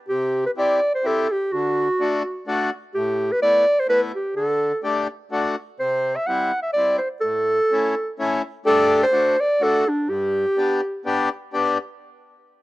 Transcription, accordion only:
0.10 0.46 C3 medium
0.57 0.80 C4 medium
0.57 0.80 E4 medium
0.57 0.80 G4 medium
1.04 1.27 C4 medium
1.04 1.28 E4 soft
1.04 1.28 G4 medium
1.53 1.88 D3 medium
2.00 2.23 A3 medium
2.00 2.23 D4 medium
2.00 2.23 F#4 medium
2.47 2.70 A3 medium
2.47 2.70 D4 medium
2.47 2.70 F#4 medium
2.96 3.31 A2 medium
3.42 3.65 A3 medium
3.42 3.65 B3 medium
3.42 3.65 E4 medium
3.88 4.12 A3 medium
3.88 4.12 B3 medium
3.88 4.12 E4 medium
4.35 4.72 D3 medium
4.84 5.07 A3 medium
4.84 5.07 D4 medium
4.84 5.08 G4 medium
5.31 5.55 A3 medium
5.31 5.56 D4 medium
5.31 5.56 F#4 medium
5.80 6.17 C3 medium
6.28 6.52 G3 medium
6.28 6.52 C4 medium
6.28 6.52 E4 medium
6.76 6.99 G3 medium
6.76 7.00 C4 soft
6.76 7.00 E4 medium
7.23 7.59 A2 medium
7.72 7.95 A3 medium
7.72 7.95 C#4 medium
7.72 7.95 E4 medium
8.19 8.42 A3 medium
8.19 8.42 C#4 medium
8.19 8.42 E4 medium
8.66 9.05 A3 medium
8.66 9.05 D4 medium
8.66 9.05 G4 medium
9.12 9.36 A3 medium
9.12 9.36 D4 medium
9.12 9.37 F#4 medium
9.60 9.84 A3 medium
9.60 9.85 D4 medium
9.60 9.85 F#4 medium
10.08 10.45 G2 medium
10.57 10.81 B3 medium
10.57 10.81 D4 medium
10.57 10.81 G4 medium
11.05 11.29 B3 medium
11.05 11.29 D4 medium
11.05 11.29 G4 medium
11.53 11.78 B3 medium
11.53 11.78 D4 medium
11.53 11.78 G4 medium

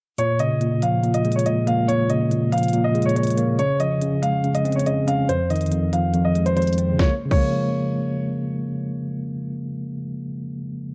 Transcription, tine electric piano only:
0.18 0.59 A#2 medium
0.40 1.46 C#3 medium
0.61 1.02 A#2 medium
0.82 1.89 F3 medium
1.04 1.45 A#2 medium
1.25 2.31 G#3 medium
1.46 1.87 A#2 medium
1.67 2.74 A#3 medium
1.89 2.30 A#2 medium
2.10 3.16 C#3 medium
2.31 2.73 A#2 medium
2.52 3.59 F3 medium
2.74 3.15 A#2 medium
2.95 3.59 G#3 medium
3.16 3.59 A#2 medium
3.37 3.59 A#3 medium
3.59 4.00 C#3 medium
3.80 4.86 F3 medium
4.02 4.43 C#3 medium
4.22 5.29 G#3 medium
4.44 4.85 C#3 medium
4.65 5.29 C4 medium
4.87 5.29 C#3 medium
5.07 5.29 C#4 medium
5.29 5.70 F2 loud
5.50 6.57 D#3 medium
5.72 6.13 F2 medium
5.93 6.96 F3 medium
6.14 6.56 F2 medium
6.35 6.99 G#3 medium
6.57 6.99 F2 medium
6.78 6.99 C4 medium
6.93 7.08 C#3 medium
6.93 7.10 F3 medium
7.01 7.12 G#3 medium
7.01 7.14 A#3 medium
7.25 10.23 C#3 medium
7.29 10.27 F3 medium
7.29 10.31 G#3 medium
7.37 10.35 A#3 medium

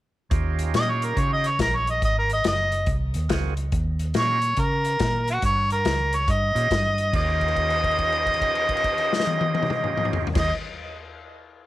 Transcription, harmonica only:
0.76 0.92 D#5 loud
0.90 1.06 C#5 medium
1.05 1.21 A#4 medium
1.19 1.32 C#5 medium
1.33 1.49 D#5 medium
1.47 1.60 C#5 medium
1.61 1.77 A#4 medium
1.75 1.88 C#5 medium
1.90 2.03 D#5 medium
2.04 2.17 D#5 medium
2.19 2.31 A#4 medium
2.33 2.45 D#5 medium
2.47 2.87 D#5 medium
4.17 4.61 C#5 medium
4.60 5.26 A#4 medium
5.30 5.44 F#4 medium
5.45 5.70 C#5 medium
5.72 6.17 A#4 medium
6.15 6.32 C#5 medium
6.31 7.12 D#5 medium
7.16 10.26 D#5 loud
10.38 10.52 D#5 loud

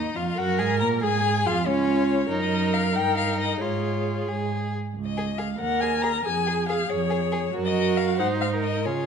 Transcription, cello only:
0.00 0.14 D#2 medium
0.17 0.38 F2 soft
0.38 0.61 F#2 medium
0.60 0.83 G#2 medium
0.81 1.04 A#2 medium
1.03 1.47 G#2 medium
1.46 1.69 F2 medium
1.68 2.30 C#2 medium
2.31 2.98 F#2 medium
2.96 3.61 G2 medium
3.62 4.28 G#2 soft
4.28 4.74 G#2 soft
4.95 5.50 C#2 medium
5.60 6.15 D#2 medium
6.25 6.79 F2 medium
6.89 7.43 F2 medium
7.54 8.21 F#2 medium
8.20 8.87 G#2 medium
8.86 9.06 C#3 medium

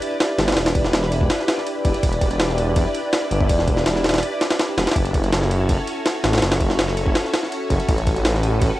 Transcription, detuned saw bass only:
0.38 0.55 G1 medium
0.57 0.92 E1 loud
0.93 1.28 E1 loud
1.85 1.93 E1 loud
2.03 2.38 E1 loud
2.40 2.75 E1 medium
2.76 2.85 E1 loud
3.31 3.48 G1 loud
3.49 3.85 E1 loud
3.86 4.21 E1 medium
4.77 4.86 E1 loud
4.96 5.31 F#1 loud
5.32 5.68 F#1 loud
5.69 5.77 F#1 loud
6.24 6.40 A1 medium
6.42 6.77 F#1 loud
6.79 7.14 F#1 loud
7.70 7.79 F#1 loud
7.89 8.24 A1 loud
8.25 8.60 A1 medium
8.61 8.70 A1 loud

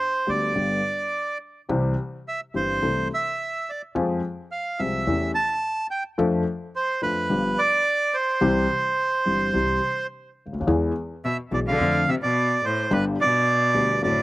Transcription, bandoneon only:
0.00 0.30 C5 medium
0.29 1.38 D5 medium
2.28 2.40 E5 medium
2.56 3.08 C5 medium
3.14 3.71 E5 medium
3.69 3.82 D5 medium
4.52 4.81 F5 medium
4.79 5.31 E5 medium
5.35 5.87 A5 medium
5.91 6.03 G5 medium
6.76 7.01 C5 medium
7.03 7.60 B4 medium
7.59 8.16 D5 loud
8.14 10.07 C5 medium
11.25 11.37 E5 medium
11.54 11.60 D5 medium
11.68 12.10 F5 medium
12.09 12.15 E5 medium
12.23 12.65 D5 medium
12.65 12.93 C5 medium
12.93 13.05 B4 medium
13.21 14.02 D5 medium
14.03 14.22 D5 medium

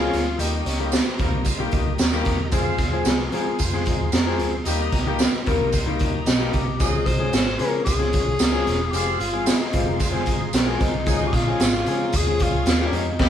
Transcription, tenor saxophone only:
0.00 0.42 F4 medium
0.40 0.68 D#4 medium
0.67 0.95 C#4 medium
0.93 1.47 C4 medium
6.27 6.55 D#4 medium
6.53 6.83 G4 medium
6.81 7.08 G#4 loud
7.06 7.60 C5 medium
7.59 7.84 A#4 loud
7.85 8.93 G#4 loud
8.92 9.21 G4 medium
9.19 9.49 F4 medium
9.47 10.00 D#4 medium
10.55 10.83 C4 medium
10.81 11.29 D#4 medium
11.28 11.36 G4 medium
11.35 12.18 F4 loud
12.16 12.44 G#4 loud
12.43 12.88 F4 loud
12.87 12.97 D4 medium
12.95 13.29 D#4 medium

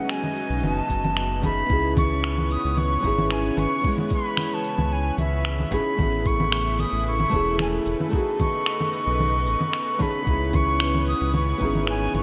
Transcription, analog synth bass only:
0.50 0.62 B1 medium
0.63 0.82 F#1 medium
0.90 1.64 F#1 loud
1.70 2.58 C#2 medium
2.65 2.98 C#2 medium
3.04 3.51 G#1 medium
3.57 3.67 G#1 medium
4.78 5.12 C#2 medium
5.18 5.65 C#2 medium
5.72 5.82 G#1 loud
5.99 6.86 A1 loud
6.92 7.26 A1 medium
7.33 7.80 E1 loud
7.86 7.96 E1 medium
9.07 9.48 B1 loud
9.46 9.56 A1 medium
10.27 11.15 C#2 loud
11.21 11.55 C#2 medium
11.61 12.08 G#1 medium
12.14 12.23 G#1 medium

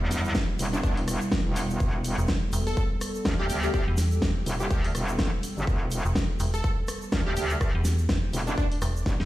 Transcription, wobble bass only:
0.01 0.33 E2 loud
0.59 0.82 E1 medium
0.83 1.19 E1 loud
1.46 1.79 E1 loud
1.80 2.16 E1 loud
3.25 3.48 D2 loud
3.50 3.85 D2 loud
4.46 4.69 E1 loud
4.71 4.93 D2 loud
4.95 5.31 E1 loud
5.57 5.66 G1 loud
5.67 6.03 E1 loud
7.12 7.35 D2 loud
7.37 7.73 D2 loud
8.33 8.56 E1 loud
9.06 9.18 E1 loud

